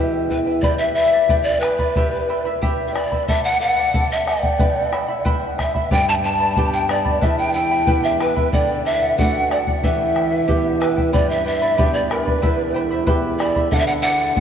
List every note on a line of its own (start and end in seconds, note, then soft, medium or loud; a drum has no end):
0.00 0.59 E2 medium
0.00 0.29 B2 medium
0.00 0.29 E4 medium
0.00 0.30 G4 medium
0.00 0.30 B4 medium
0.00 0.26 E5 medium
0.00 0.28 E5 medium
0.00 0.30 G5 medium
0.29 0.62 E3 soft
0.29 0.46 E4 medium
0.29 0.37 B4 medium
0.29 0.38 B4 medium
0.29 0.46 B4 medium
0.29 0.46 E5 medium
0.29 0.45 G5 medium
0.29 bombo low soft
0.29 shaker soft
0.46 0.63 E4 soft
0.46 0.63 B4 soft
0.46 0.62 G5 soft
0.62 0.96 G4 medium
0.62 0.95 B4 medium
0.62 0.77 D5 medium
0.62 0.78 D5 medium
0.62 0.96 D5 medium
0.62 0.95 G5 medium
0.62 0.97 B5 medium
0.62 bombo low medium
0.62 shaker medium
0.78 0.94 E5 medium
0.94 1.13 B4 medium
0.94 1.12 D5 medium
0.94 1.45 E5 loud
0.94 1.46 E5 medium
0.94 1.13 G5 medium
0.94 1.11 B5 medium
1.13 1.28 B4 soft
1.13 1.29 D5 soft
1.13 1.29 B5 soft
1.29 1.62 G4 medium
1.29 1.62 B4 medium
1.29 1.62 D5 medium
1.29 1.61 G5 medium
1.29 1.63 B5 medium
1.29 bombo low medium
1.29 shaker medium
1.43 1.60 D5 medium
1.43 1.61 D5 medium
1.60 2.57 B4 medium
1.60 1.79 B4 medium
1.60 1.79 D5 medium
1.60 1.79 G5 medium
1.60 1.78 B5 medium
1.60 bombo rim medium
1.60 shaker medium
1.79 1.96 B4 soft
1.79 1.96 D5 soft
1.79 1.96 B5 medium
1.79 bombo low medium
1.96 2.28 E4 medium
1.96 2.29 G4 medium
1.96 2.28 E5 medium
1.96 2.28 G5 medium
1.96 2.29 B5 medium
1.96 bombo low medium
1.96 shaker medium
2.29 2.45 E4 medium
2.29 2.45 E5 medium
2.29 2.45 G5 medium
2.29 2.44 B5 medium
2.45 2.61 E4 soft
2.45 2.61 E5 medium
2.45 2.61 B5 medium
2.62 2.94 E4 medium
2.62 2.95 G4 loud
2.62 2.94 E5 loud
2.62 2.93 G5 medium
2.62 2.94 B5 loud
2.62 bombo low medium
2.62 shaker medium
2.87 2.95 E5 medium
2.87 2.97 G5 soft
2.94 3.11 E4 medium
2.94 3.27 D5 medium
2.94 3.11 E5 medium
2.94 3.11 G5 medium
2.94 3.10 B5 medium
2.94 bombo rim medium
2.94 shaker medium
3.11 3.29 E4 soft
3.11 3.28 E5 soft
3.11 3.28 B5 soft
3.11 bombo low medium
3.27 3.59 A4 medium
3.27 3.60 D5 medium
3.27 3.43 E5 loud
3.27 3.60 F#5 medium
3.27 3.43 A5 medium
3.27 bombo low medium
3.27 shaker medium
3.44 3.59 F#5 medium
3.44 3.60 F#5 loud
3.60 3.77 A4 medium
3.60 3.77 D5 medium
3.60 4.07 F#5 loud
3.60 3.77 F#5 medium
3.78 3.93 D5 soft
3.78 3.93 F#5 medium
3.94 4.24 A4 medium
3.94 4.25 D5 medium
3.94 4.26 F#5 medium
3.94 bombo low medium
3.94 shaker medium
4.11 4.29 E5 medium
4.11 4.30 E5 medium
4.26 4.43 A4 medium
4.26 4.42 D5 medium
4.26 5.26 D5 medium
4.26 4.41 F#5 medium
4.26 5.26 G5 medium
4.26 bombo rim medium
4.26 shaker medium
4.42 4.59 D5 soft
4.42 4.59 F#5 medium
4.42 bombo low medium
4.59 4.91 E4 medium
4.59 4.92 B4 medium
4.59 4.92 E5 medium
4.59 4.91 G5 medium
4.59 4.92 B5 medium
4.59 bombo low medium
4.59 shaker medium
4.92 5.09 E4 medium
4.92 5.08 E5 medium
4.92 5.09 G5 medium
4.92 5.07 B5 medium
4.92 bombo rim medium
4.92 shaker medium
5.08 5.24 E4 soft
5.08 5.24 E5 medium
5.08 5.25 B5 medium
5.25 5.57 E4 medium
5.25 5.58 B4 medium
5.25 5.58 E5 loud
5.25 5.57 G5 medium
5.25 5.58 B5 medium
5.25 bombo low medium
5.25 shaker medium
5.58 5.75 E4 medium
5.58 5.74 E5 medium
5.58 5.94 E5 medium
5.58 5.93 E5 medium
5.58 5.75 G5 medium
5.58 5.73 B5 medium
5.58 bombo rim medium
5.58 bombo low soft
5.58 shaker medium
5.74 5.91 E4 soft
5.74 5.91 E5 soft
5.74 5.91 B5 soft
5.74 bombo low medium
5.90 7.19 G2 medium
5.90 6.24 G4 medium
5.90 6.23 B4 medium
5.90 6.24 D5 medium
5.90 6.23 G5 medium
5.90 6.08 G5 loud
5.90 6.08 G5 medium
5.90 6.24 B5 medium
5.90 bombo low medium
5.90 shaker medium
6.09 6.15 A5 loud
6.09 6.15 A5 medium
6.24 6.40 B4 medium
6.24 6.40 D5 medium
6.24 6.40 G5 medium
6.24 6.70 A5 loud
6.24 6.70 A5 medium
6.24 6.39 B5 medium
6.40 6.56 B4 soft
6.40 6.56 D5 soft
6.40 6.56 B5 soft
6.56 7.21 B3 soft
6.56 7.21 D4 soft
6.56 6.89 G4 medium
6.56 7.21 G4 medium
6.56 6.88 B4 medium
6.56 6.88 D5 medium
6.56 6.87 G5 medium
6.56 6.88 B5 medium
6.56 bombo low medium
6.56 shaker medium
6.73 6.88 G5 medium
6.73 6.89 G5 medium
6.88 7.05 B4 medium
6.88 7.04 D5 medium
6.88 7.24 D5 medium
6.88 6.95 D#5 medium
6.88 7.05 G5 medium
6.88 7.04 B5 medium
6.88 bombo rim medium
6.88 shaker medium
6.94 7.24 D5 medium
7.05 7.20 B4 soft
7.05 7.22 D5 soft
7.05 7.21 B5 soft
7.05 bombo low medium
7.21 8.50 E2 medium
7.21 7.54 E4 medium
7.21 7.54 B4 medium
7.21 7.55 E5 medium
7.21 7.37 E5 medium
7.21 7.38 E5 medium
7.21 7.54 G5 medium
7.21 7.55 B5 medium
7.21 bombo low medium
7.21 shaker medium
7.38 7.53 G5 medium
7.38 7.54 G5 medium
7.53 7.71 E4 medium
7.53 7.71 E5 medium
7.53 8.05 G5 medium
7.53 7.71 G5 medium
7.53 8.06 G5 medium
7.53 7.70 B5 medium
7.71 7.86 E4 soft
7.71 7.87 E5 soft
7.71 7.87 B5 medium
7.87 8.51 B3 medium
7.87 8.19 E4 medium
7.87 8.52 E4 soft
7.87 8.52 G4 medium
7.87 8.20 B4 medium
7.87 8.19 E5 medium
7.87 8.19 G5 medium
7.87 8.20 B5 medium
7.87 bombo low medium
7.87 shaker loud
8.03 8.19 E5 medium
8.19 8.36 E4 medium
8.19 8.50 B4 medium
8.19 8.36 E5 medium
8.19 8.36 G5 medium
8.19 8.35 B5 medium
8.19 bombo rim medium
8.19 shaker medium
8.36 8.53 E4 soft
8.36 8.52 E5 soft
8.36 8.53 B5 medium
8.36 bombo low medium
8.52 9.80 D3 medium
8.52 8.84 A4 medium
8.52 8.83 D5 medium
8.52 8.83 D5 loud
8.52 8.85 D5 medium
8.52 8.85 F#5 medium
8.52 bombo low medium
8.52 shaker loud
8.85 9.02 A4 medium
8.85 9.02 D5 medium
8.85 9.16 E5 medium
8.85 9.00 F#5 medium
9.02 9.18 D5 soft
9.02 9.18 F#5 soft
9.18 9.81 A3 medium
9.18 9.82 D4 soft
9.18 9.82 F#4 medium
9.18 9.50 A4 medium
9.18 9.50 D5 medium
9.18 9.48 F#5 medium
9.18 9.51 F#5 medium
9.18 bombo low medium
9.18 shaker medium
9.50 9.67 A4 medium
9.50 9.58 D5 medium
9.50 9.59 D5 medium
9.50 9.67 D5 medium
9.50 9.66 F#5 medium
9.50 bombo rim soft
9.50 shaker medium
9.67 9.83 D5 soft
9.67 9.83 F#5 soft
9.67 bombo low medium
9.83 11.10 E3 medium
9.83 10.14 E4 medium
9.83 10.16 G4 medium
9.83 10.14 B4 medium
9.83 10.76 E5 medium
9.83 10.13 E5 medium
9.83 10.77 E5 medium
9.83 10.15 G5 medium
9.83 bombo low medium
9.83 shaker medium
10.15 10.32 E4 medium
10.15 10.31 B4 medium
10.15 10.31 E5 medium
10.15 10.30 G5 medium
10.15 bombo rim soft
10.15 shaker medium
10.31 10.47 E4 soft
10.31 10.47 B4 medium
10.31 10.47 G5 soft
10.47 11.11 B3 soft
10.47 10.79 E4 medium
10.47 11.11 E4 soft
10.47 10.80 G4 medium
10.47 11.11 G4 medium
10.47 10.80 B4 medium
10.47 10.79 E5 medium
10.47 10.80 G5 medium
10.47 bombo low medium
10.47 shaker medium
10.80 10.97 E4 medium
10.80 11.15 B4 medium
10.80 10.96 B4 medium
10.80 10.96 E5 medium
10.80 10.95 G5 medium
10.80 bombo rim medium
10.80 shaker medium
10.96 11.13 E4 soft
10.96 11.12 B4 soft
10.96 11.12 G5 medium
10.96 bombo low medium
11.13 12.39 G2 medium
11.13 11.45 G4 medium
11.13 11.44 B4 medium
11.13 11.31 D5 loud
11.13 11.45 D5 medium
11.13 11.43 G5 medium
11.13 11.45 B5 medium
11.13 bombo low medium
11.13 shaker medium
11.30 11.46 E5 loud
11.45 11.62 B4 medium
11.45 11.61 D5 medium
11.45 11.91 E5 loud
11.45 11.61 G5 medium
11.45 11.61 B5 medium
11.62 11.77 B4 soft
11.62 11.77 D5 soft
11.62 11.77 B5 medium
11.77 12.41 B3 soft
11.77 12.41 D4 soft
11.77 12.10 G4 medium
11.77 12.41 G4 medium
11.77 12.09 B4 medium
11.77 12.10 D5 medium
11.77 12.09 G5 medium
11.77 12.10 B5 medium
11.77 bombo low medium
11.77 shaker medium
11.94 12.09 D5 medium
12.10 12.25 A#4 medium
12.10 12.26 B4 medium
12.10 12.25 D5 medium
12.10 12.26 G5 medium
12.10 12.25 B5 medium
12.10 bombo rim medium
12.10 shaker medium
12.25 13.04 B4 medium
12.25 12.41 B4 soft
12.25 12.42 D5 soft
12.25 12.41 B5 medium
12.25 bombo low medium
12.42 13.68 E2 medium
12.42 12.74 E4 medium
12.42 12.75 B4 medium
12.42 12.74 E5 medium
12.42 12.73 G5 medium
12.42 12.75 B5 medium
12.42 bombo low medium
12.42 shaker medium
12.74 12.91 E4 medium
12.74 12.90 E5 medium
12.74 12.91 G5 medium
12.74 12.89 B5 medium
12.91 13.06 E4 soft
12.91 13.06 E5 medium
12.91 13.06 B5 medium
13.06 13.70 B3 soft
13.06 13.39 E4 medium
13.06 13.70 E4 soft
13.06 13.70 G4 medium
13.06 13.39 B4 medium
13.06 13.39 E5 medium
13.06 13.38 G5 medium
13.06 13.39 B5 loud
13.06 bombo low medium
13.06 shaker medium
13.39 13.56 E4 medium
13.39 13.69 D5 medium
13.39 13.56 E5 medium
13.39 13.55 G5 medium
13.39 13.55 B5 medium
13.39 bombo rim medium
13.39 shaker medium
13.56 13.73 E4 soft
13.56 13.71 E5 soft
13.56 13.72 B5 soft
13.56 bombo low medium
13.71 14.40 D3 medium
13.71 14.03 A4 medium
13.71 14.04 D5 medium
13.71 13.77 E5 loud
13.71 14.04 F#5 medium
13.71 bombo low medium
13.71 shaker medium
13.75 13.86 E5 loud
13.75 13.80 F#5 medium
13.87 13.93 F#5 loud
14.02 14.20 A4 medium
14.02 14.20 D5 medium
14.02 14.40 F#5 loud
14.02 14.18 F#5 medium
14.20 14.36 D5 soft
14.20 14.36 F#5 medium
14.36 14.40 A3 medium
14.36 14.40 D4 soft
14.36 14.40 A4 medium
14.36 14.40 D5 medium
14.36 bombo low medium
14.36 shaker medium